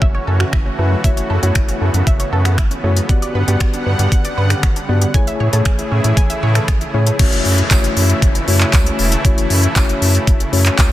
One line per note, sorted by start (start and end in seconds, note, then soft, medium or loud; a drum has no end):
0.00 0.18 F#1 loud
0.00 5.11 C#3 medium
0.00 3.05 E3 medium
0.00 0.22 A3 medium
0.00 3.05 A3 medium
0.00 1.02 C#4 medium
0.00 0.22 E4 medium
0.00 0.22 F#4 medium
0.00 3.05 F#4 medium
0.00 0.22 C#5 medium
0.00 0.13 E5 loud
0.00 kick medium
0.15 0.26 C#5 medium
0.27 0.44 F#2 loud
0.27 0.39 A4 medium
0.40 0.52 F#4 medium
0.40 finger snap medium
0.53 0.70 F#1 loud
0.53 0.64 E4 medium
0.53 finger snap loud
0.53 kick loud
0.66 0.77 C#4 medium
0.79 0.95 F#2 loud
0.79 1.00 A3 medium
0.79 0.90 A3 medium
0.79 1.00 E4 medium
0.79 1.00 F#4 medium
0.79 1.00 B4 medium
0.92 1.03 F#3 medium
1.04 1.21 F#1 loud
1.04 1.36 A3 medium
1.04 5.11 B3 medium
1.04 1.36 E4 medium
1.04 1.36 F#4 medium
1.04 1.36 C#5 medium
1.04 1.16 E5 loud
1.04 kick loud
1.04 closed hi-hat medium
1.17 1.29 C#5 medium
1.17 closed hi-hat medium
1.30 1.38 F#2 loud
1.30 1.41 A4 medium
1.43 1.51 F#2 loud
1.43 2.27 A3 medium
1.43 2.27 E4 medium
1.43 1.54 F#4 medium
1.43 2.27 F#4 medium
1.43 2.27 C#5 medium
1.43 closed hi-hat soft
1.55 1.72 F#1 loud
1.55 1.67 E4 medium
1.55 finger snap loud
1.55 kick loud
1.55 closed hi-hat medium
1.69 1.80 C#4 medium
1.69 closed hi-hat medium
1.81 1.90 F#2 loud
1.81 1.93 A3 medium
1.94 2.02 F#2 medium
1.94 2.06 F#3 medium
1.94 closed hi-hat soft
2.07 2.24 F#1 loud
2.07 2.19 E5 loud
2.07 kick loud
2.07 closed hi-hat medium
2.20 2.31 C#5 medium
2.20 closed hi-hat medium
2.32 2.60 F#2 loud
2.32 2.44 A4 medium
2.45 2.57 F#4 medium
2.45 finger snap medium
2.45 closed hi-hat medium
2.58 2.75 F#1 medium
2.58 2.70 E4 medium
2.58 finger snap loud
2.58 kick loud
2.58 closed hi-hat medium
2.71 2.83 C#4 medium
2.71 closed hi-hat medium
2.84 3.00 F#2 loud
2.84 3.05 A3 medium
2.84 2.95 A3 medium
2.84 3.05 E4 medium
2.84 3.05 F#4 medium
2.84 3.05 C#5 medium
2.97 3.08 F#3 medium
2.97 closed hi-hat medium
3.09 3.26 G1 loud
3.09 5.13 D3 medium
3.09 5.13 G3 medium
3.09 3.41 B3 medium
3.09 3.41 F#4 medium
3.09 3.41 G4 medium
3.09 3.41 D5 loud
3.09 3.21 F#5 loud
3.09 5.13 F#5 medium
3.09 kick loud
3.09 closed hi-hat medium
3.22 3.34 D5 medium
3.22 closed hi-hat medium
3.35 3.43 G2 medium
3.35 3.47 B4 medium
3.48 3.56 G2 medium
3.48 4.32 B3 medium
3.48 4.32 F#4 medium
3.48 3.59 G4 medium
3.48 4.32 G4 medium
3.48 4.32 D5 medium
3.48 closed hi-hat soft
3.60 3.77 G1 loud
3.60 3.72 F#4 medium
3.60 finger snap loud
3.60 kick loud
3.60 closed hi-hat medium
3.74 3.85 D4 medium
3.74 closed hi-hat medium
3.86 3.95 G2 medium
3.86 3.98 B3 medium
3.99 4.08 G2 loud
3.99 4.11 G3 medium
3.99 closed hi-hat soft
4.12 4.29 G1 loud
4.12 4.24 F#5 loud
4.12 kick loud
4.12 closed hi-hat medium
4.25 4.36 D5 medium
4.25 closed hi-hat medium
4.38 4.54 G2 loud
4.38 4.49 B4 medium
4.50 4.62 G4 medium
4.50 finger snap medium
4.50 closed hi-hat medium
4.63 4.80 G1 loud
4.63 4.75 F#4 medium
4.63 finger snap loud
4.63 kick loud
4.63 closed hi-hat medium
4.76 4.88 D4 medium
4.76 closed hi-hat medium
4.89 5.06 G2 loud
4.89 5.10 B3 medium
4.89 5.00 B3 medium
4.89 5.10 F#4 medium
4.89 5.10 G4 medium
4.89 5.10 D5 medium
5.02 5.13 G3 medium
5.02 closed hi-hat medium
5.14 5.31 A1 loud
5.14 7.18 C#3 medium
5.14 7.18 E3 medium
5.14 5.46 A3 medium
5.14 7.18 A3 medium
5.14 5.46 E4 medium
5.14 7.18 E4 medium
5.14 5.46 G#4 medium
5.14 7.18 G#4 medium
5.14 5.46 C#5 loud
5.14 5.26 G#5 loud
5.14 kick loud
5.14 closed hi-hat medium
5.27 5.39 E5 medium
5.27 closed hi-hat medium
5.40 5.49 A2 medium
5.40 5.52 C#5 medium
5.53 5.61 A2 medium
5.53 6.37 A3 medium
5.53 6.37 E4 medium
5.53 6.37 G#4 medium
5.53 5.65 A4 medium
5.53 6.38 C#5 loud
5.53 closed hi-hat medium
5.65 5.82 A1 loud
5.65 5.77 G#4 medium
5.65 finger snap loud
5.65 kick loud
5.65 closed hi-hat medium
5.79 5.90 E4 medium
5.79 closed hi-hat medium
5.91 6.00 A2 loud
5.91 6.03 C#4 medium
6.04 6.13 A2 loud
6.04 6.16 A3 medium
6.04 closed hi-hat soft
6.17 6.34 A1 loud
6.17 6.29 G#5 loud
6.17 kick loud
6.17 closed hi-hat medium
6.30 6.41 E5 medium
6.30 closed hi-hat medium
6.43 6.60 A2 loud
6.43 6.54 C#5 medium
6.55 6.67 A4 medium
6.55 finger snap medium
6.55 closed hi-hat medium
6.68 6.85 A1 loud
6.68 6.80 G#4 medium
6.68 finger snap loud
6.68 kick loud
6.68 closed hi-hat medium
6.81 6.93 E4 medium
6.81 closed hi-hat medium
6.94 7.11 A2 loud
6.94 7.15 A3 medium
6.94 7.06 C#4 medium
6.94 7.15 E4 medium
6.94 7.15 G#4 medium
6.94 7.15 C#5 medium
7.07 7.18 A3 medium
7.07 closed hi-hat medium
7.19 7.28 F#1 loud
7.19 10.92 C#3 medium
7.19 10.92 E3 medium
7.19 7.62 A3 medium
7.19 10.92 A3 medium
7.19 7.62 C#4 medium
7.19 10.92 E4 medium
7.19 7.62 E4 medium
7.19 7.62 F#4 medium
7.19 7.62 C#5 loud
7.19 kick loud
7.19 closed hi-hat medium
7.19 crash loud
7.19 downlifter medium
7.32 7.41 F#1 loud
7.32 closed hi-hat medium
7.45 7.62 F#2 loud
7.45 open hi-hat medium
7.58 closed hi-hat soft
7.71 7.88 F#1 loud
7.71 8.34 A3 medium
7.71 8.34 C#4 medium
7.71 8.34 E4 medium
7.71 8.34 F#4 medium
7.71 8.34 C#5 medium
7.71 kick loud
7.71 clap loud
7.71 closed hi-hat medium
7.71 tambourine loud
7.84 closed hi-hat medium
7.97 8.13 F#2 loud
7.97 open hi-hat medium
8.10 closed hi-hat soft
8.22 8.39 F#1 loud
8.22 kick loud
8.22 closed hi-hat medium
8.35 closed hi-hat medium
8.48 8.65 F#2 loud
8.48 9.11 A3 medium
8.48 9.11 C#4 medium
8.48 9.11 E4 medium
8.48 9.11 F#4 medium
8.48 9.11 C#5 medium
8.48 open hi-hat medium
8.61 clap medium
8.73 8.90 C#2 loud
8.73 kick loud
8.73 clap loud
8.73 closed hi-hat medium
8.73 tambourine medium
8.86 closed hi-hat medium
8.99 9.16 E1 medium
8.99 open hi-hat medium
9.12 closed hi-hat medium
9.25 9.33 F#1 loud
9.25 9.67 A3 medium
9.25 9.67 C#4 medium
9.25 9.67 E4 medium
9.25 9.67 F#4 medium
9.25 9.67 C#5 loud
9.25 kick loud
9.25 closed hi-hat medium
9.38 9.46 F#1 loud
9.38 closed hi-hat medium
9.50 9.67 F#2 medium
9.50 open hi-hat medium
9.63 closed hi-hat medium
9.76 9.93 F#1 loud
9.76 10.39 A3 medium
9.76 10.39 C#4 medium
9.76 10.39 E4 medium
9.76 10.39 F#4 medium
9.76 10.39 C#5 medium
9.76 kick loud
9.76 clap loud
9.76 closed hi-hat medium
9.76 tambourine loud
9.89 closed hi-hat medium
10.02 10.18 F#2 loud
10.02 open hi-hat medium
10.15 closed hi-hat soft
10.27 10.44 F#1 loud
10.27 kick loud
10.27 closed hi-hat medium
10.40 closed hi-hat medium
10.53 10.70 F#2 loud
10.53 10.92 A3 medium
10.53 10.92 C#4 medium
10.53 10.92 E4 medium
10.53 10.92 F#4 medium
10.53 10.92 C#5 medium
10.53 open hi-hat medium
10.66 clap medium
10.66 closed hi-hat medium
10.79 10.92 C#2 medium
10.79 kick loud
10.79 clap loud
10.79 closed hi-hat medium
10.79 tambourine medium